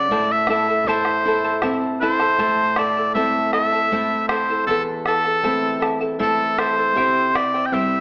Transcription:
0.00 0.11 C#5 soft
0.00 0.33 D5 medium
0.09 2.35 A2 medium
0.09 0.48 E4 medium
0.09 0.48 A4 medium
0.09 0.49 C5 medium
0.09 0.47 E5 medium
0.09 0.49 A5 medium
0.09 bombo rim soft
0.09 bombo low medium
0.29 0.49 E5 medium
0.29 bombo rim soft
0.47 0.85 E4 medium
0.47 0.68 E4 medium
0.47 0.68 A4 medium
0.47 0.67 E5 medium
0.47 0.89 E5 medium
0.47 0.68 A5 medium
0.47 bombo rim medium
0.69 0.86 E4 soft
0.69 0.87 A4 soft
0.69 0.87 A5 medium
0.84 1.25 E4 medium
0.84 1.23 A4 soft
0.84 1.25 A4 medium
0.84 1.25 C5 medium
0.84 1.63 C5 medium
0.84 1.25 E5 medium
0.84 bombo rim soft
0.84 bombo low medium
0.89 1.26 A5 medium
1.05 bombo rim medium
1.25 1.62 E4 medium
1.25 1.44 E4 medium
1.25 1.43 A4 medium
1.25 1.44 E5 medium
1.25 1.43 A5 medium
1.44 1.61 E4 soft
1.44 1.61 A4 soft
1.44 1.62 A5 medium
1.62 2.00 C4 soft
1.62 2.00 E4 medium
1.62 2.01 A4 medium
1.62 2.00 C5 medium
1.62 2.00 E5 medium
1.62 2.01 A5 medium
1.62 bombo rim medium
1.62 bombo low medium
2.01 2.20 E4 medium
2.01 2.38 E4 medium
2.01 2.20 A4 medium
2.01 2.80 C5 medium
2.01 2.20 E5 medium
2.01 2.18 A5 medium
2.19 2.38 E4 soft
2.19 2.39 A4 soft
2.19 2.38 A5 medium
2.19 bombo rim soft
2.38 4.63 A2 medium
2.38 2.77 E4 medium
2.38 2.77 A4 medium
2.38 2.77 C5 medium
2.38 2.76 E5 medium
2.38 2.77 A5 medium
2.38 bombo low medium
2.76 2.96 E4 medium
2.76 2.96 A4 medium
2.76 3.13 D5 medium
2.76 2.96 E5 soft
2.76 2.96 A5 medium
2.76 bombo rim medium
2.96 3.15 E4 soft
2.96 3.15 A4 soft
2.96 3.15 A5 soft
2.96 bombo rim soft
3.14 3.88 A3 soft
3.14 3.89 C4 soft
3.14 3.89 E4 soft
3.14 3.52 E4 medium
3.14 3.52 A4 medium
3.14 3.53 C5 medium
3.14 3.50 E5 loud
3.14 3.51 E5 medium
3.14 3.53 A5 medium
3.14 bombo low medium
3.52 3.72 E4 medium
3.52 3.72 A4 medium
3.52 3.72 E5 medium
3.52 4.25 E5 loud
3.52 3.71 A5 medium
3.52 bombo rim medium
3.72 3.92 E4 soft
3.72 3.92 A4 soft
3.72 3.91 A5 medium
3.91 4.65 A3 soft
3.91 4.65 C4 soft
3.91 4.65 E4 medium
3.91 4.29 E4 medium
3.91 4.29 A4 medium
3.91 4.30 C5 medium
3.91 4.29 E5 medium
3.91 4.30 A5 medium
3.91 bombo low medium
4.28 4.48 E4 medium
4.28 4.49 A4 medium
4.28 4.64 C5 medium
4.28 4.48 E5 medium
4.28 4.49 A5 medium
4.28 bombo rim medium
4.50 4.69 E4 soft
4.50 4.68 A4 soft
4.50 4.68 A5 soft
4.67 6.92 E2 medium
4.67 4.83 A4 medium
4.67 5.07 A4 medium
4.67 5.07 C5 medium
4.67 5.06 E5 medium
4.67 5.07 A5 medium
4.67 bombo low medium
4.71 5.06 E4 medium
5.06 5.25 E4 medium
5.06 5.90 A4 loud
5.06 5.25 A4 medium
5.06 5.25 E5 medium
5.06 5.25 A5 medium
5.06 bombo rim medium
5.25 5.43 E4 soft
5.25 5.43 A4 soft
5.25 5.43 A5 medium
5.25 bombo rim soft
5.43 6.18 A3 soft
5.43 6.18 C4 soft
5.43 5.80 E4 medium
5.43 6.18 E4 soft
5.43 5.80 A4 medium
5.43 5.81 C5 medium
5.43 5.79 E5 medium
5.43 5.81 A5 medium
5.43 bombo low medium
5.80 6.00 E4 medium
5.80 6.00 A4 medium
5.80 6.00 E5 medium
5.80 6.00 A5 medium
5.80 bombo rim medium
6.01 6.18 E4 soft
6.01 6.18 A4 soft
6.01 6.19 A5 medium
6.19 6.94 A3 soft
6.19 6.94 C4 soft
6.19 6.58 E4 medium
6.19 6.94 E4 soft
6.19 6.58 A4 medium
6.19 6.60 A4 medium
6.19 6.57 C5 medium
6.19 6.57 E5 medium
6.19 6.58 A5 medium
6.19 bombo low medium
6.58 6.77 E4 medium
6.58 6.77 A4 medium
6.58 7.38 C5 medium
6.58 6.77 E5 medium
6.58 6.76 A5 medium
6.58 bombo rim medium
6.77 6.95 E4 soft
6.77 6.97 A4 soft
6.77 6.96 A5 medium
6.95 8.00 C3 medium
6.95 7.33 E4 medium
6.95 7.34 G4 medium
6.95 7.34 C5 medium
6.95 7.33 E5 medium
6.95 7.34 G5 medium
6.95 bombo low medium
7.34 7.53 E4 medium
7.34 7.54 C5 medium
7.34 7.67 D5 medium
7.34 7.53 E5 medium
7.34 7.53 G5 medium
7.34 bombo rim medium
7.54 7.72 E4 soft
7.54 7.73 C5 soft
7.54 7.73 G5 soft
7.54 bombo rim soft
7.66 7.75 G5 medium
7.72 8.00 G3 soft
7.72 8.00 C4 soft
7.72 8.00 E4 soft
7.72 8.00 E4 medium
7.72 8.00 G4 medium
7.72 8.00 C5 medium
7.72 8.00 E5 loud
7.72 8.00 E5 medium
7.72 8.00 G5 medium
7.72 bombo low medium

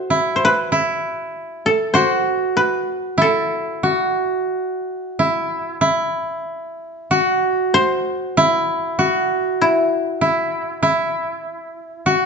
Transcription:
0.00 0.97 F#4 medium
0.00 1.09 A4 medium
0.00 0.35 C5 medium
0.00 0.92 E5 medium
0.10 0.72 E4 medium
0.36 0.51 C5 medium
0.45 2.00 B4 medium
0.72 2.98 E4 medium
1.66 3.21 A4 medium
1.94 3.83 F#4 medium
1.94 2.63 C5 medium
2.57 4.34 B4 medium
3.18 5.19 E4 medium
3.18 5.15 A4 medium
3.83 5.94 F#4 medium
5.19 5.81 E4 medium
5.81 8.07 E4 medium
7.11 8.98 F#4 medium
7.74 9.56 C5 medium
8.37 10.21 E4 medium
8.99 11.10 F#4 medium
9.61 11.88 E4 medium
10.21 10.82 E4 medium
10.83 12.26 E4 medium
12.06 12.26 F#4 medium

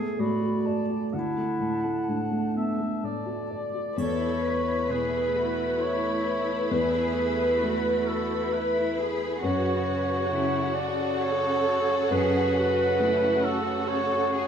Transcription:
0.00 1.10 D2 soft
0.00 0.18 A2 soft
0.00 1.16 A3 soft
0.00 1.16 B3 soft
0.00 0.21 G#4 medium
0.18 0.56 A2 soft
0.18 0.84 F#4 medium
0.18 1.14 D5 soft
0.18 0.67 B5 soft
0.42 0.80 F#4 soft
0.66 1.04 D5 soft
0.66 1.11 A5 soft
0.89 1.27 F#4 soft
1.12 3.94 D2 soft
1.12 2.11 E4 medium
1.12 2.56 F#5 soft
1.12 3.61 A5 soft
1.37 1.75 A3 soft
1.60 1.98 A2 soft
1.84 2.22 A3 soft
2.08 2.46 A2 soft
2.08 3.52 D4 soft
2.31 2.70 A3 soft
2.55 2.79 B3 soft
2.55 3.06 E5 soft
2.79 3.18 A3 soft
3.03 3.41 A2 soft
3.03 3.98 D5 soft
3.26 3.65 F#4 soft
3.50 3.88 D5 soft
3.74 3.97 F#4 soft
3.96 6.67 E2 soft
3.96 9.39 A3 soft
3.96 9.39 E4 soft
3.96 4.40 A4 soft
3.96 10.26 B4 soft
3.96 4.92 C#5 medium
3.96 9.38 B5 soft
3.96 triangle soft
4.43 4.90 B4 soft
4.89 7.80 B2 soft
4.89 5.36 G#4 soft
4.89 5.82 B4 soft
5.36 5.81 F#4 soft
5.81 6.72 E4 soft
5.81 6.71 C#5 medium
6.71 9.39 E2 soft
6.71 7.61 G#4 soft
6.71 8.09 B4 medium
7.63 9.43 A3 soft
7.63 8.53 F#4 soft
8.07 8.54 A4 medium
8.53 8.99 E4 soft
8.53 8.98 B4 medium
8.99 9.43 G#4 soft
9.42 12.07 F#2 soft
9.42 14.47 C#3 soft
9.42 14.47 F#4 medium
9.42 10.32 F#4 soft
9.42 10.76 C#5 medium
9.42 14.47 F#5 soft
10.31 13.18 C#3 soft
10.31 10.76 E4 soft
10.31 14.47 A4 soft
10.75 11.20 F#4 medium
10.75 11.22 D5 medium
11.20 12.11 A4 medium
11.20 12.11 C#5 medium
12.11 14.47 F#2 soft
12.11 12.56 G#4 medium
12.11 13.46 B4 medium
12.57 13.01 F#4 soft
12.99 14.47 A3 soft
12.99 13.44 E4 soft
13.44 13.89 F#4 medium
13.44 13.90 A4 medium
13.88 14.33 A4 medium
13.88 14.47 C#5 medium
14.33 14.47 G#4 medium

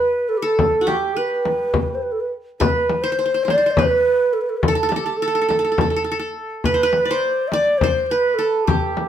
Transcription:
0.00 0.30 B4 medium
0.00 0.81 B4 medium
0.29 0.39 A4 medium
0.37 0.46 G4 medium
0.42 1.60 A4 medium
0.42 0.90 A4 medium
0.59 frame drum medium
0.81 0.93 F#4 medium
0.87 2.12 G4 medium
0.87 1.20 G4 medium
0.87 frame drum medium
1.16 2.26 B4 medium
1.16 1.96 B4 medium
1.45 frame drum medium
1.74 frame drum medium
1.95 2.04 C5 medium
2.02 2.13 B4 medium
2.12 2.22 A4 medium
2.20 2.30 B4 medium
2.60 3.04 B4 medium
2.60 3.10 B4 medium
2.60 frame drum medium
2.89 frame drum medium
3.02 3.45 C5 medium
3.02 3.12 C5 medium
3.12 3.18 C5 medium
3.19 3.25 C5 medium
3.26 3.34 C5 soft
3.34 3.44 C5 medium
3.43 3.50 C5 soft
3.43 3.73 D5 medium
3.48 3.57 C5 medium
3.48 frame drum medium
3.58 3.66 C5 medium
3.66 3.85 C5 medium
3.71 4.35 B4 loud
3.77 4.88 B4 medium
3.77 frame drum medium
4.33 4.43 A4 medium
4.41 4.51 B4 medium
4.49 4.59 A4 medium
4.57 4.64 B4 medium
4.63 4.92 A4 medium
4.63 frame drum medium
4.68 4.75 A4 medium
4.75 4.83 A4 medium
4.83 4.88 A4 medium
4.89 5.19 G4 medium
4.89 4.96 A4 medium
4.89 frame drum medium
4.96 5.05 A4 medium
5.06 5.22 A4 medium
5.17 6.34 A4 medium
5.22 5.27 A4 medium
5.28 5.35 A4 medium
5.35 5.41 A4 medium
5.42 5.48 A4 soft
5.49 5.59 A4 medium
5.49 frame drum medium
5.59 5.64 A4 medium
5.65 5.71 A4 soft
5.72 5.80 A4 soft
5.78 5.90 A4 medium
5.78 frame drum medium
5.90 5.96 A4 soft
5.96 6.04 A4 medium
6.04 6.11 A4 soft
6.12 6.19 A4 medium
6.19 7.37 A4 medium
6.64 7.05 B4 medium
6.64 6.80 B4 medium
6.64 frame drum medium
6.74 6.89 C5 medium
6.83 7.17 B4 medium
6.93 frame drum medium
7.05 7.49 C5 medium
7.05 7.53 D5 medium
7.11 7.83 C5 medium
7.48 7.54 E5 medium
7.48 frame drum medium
7.53 7.80 D5 loud
7.53 8.52 D5 medium
7.78 8.06 C5 medium
7.78 frame drum medium
7.84 8.17 C5 medium
8.06 8.12 C5 medium
8.11 8.36 B4 medium
8.11 9.09 B4 medium
8.34 8.66 A4 medium
8.39 9.09 A4 medium
8.65 9.09 G4 medium
8.65 frame drum medium
8.97 frame drum medium

